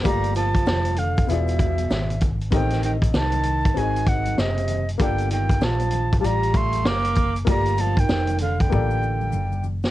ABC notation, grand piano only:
X:1
M:4/4
L:1/8
Q:"Swing 16ths" 1/4=97
K:Gm
V:1 name="Grand piano"
[A,B,FGd]3 z [=B,=EF^Gd]3 z | [=B,CEGAe]3 z [CE_G_Ae]3 z | [B,FGAd]3 z [G,FGd]3 z | [A,B,FGd]3 z [B,FGAd]3 z |]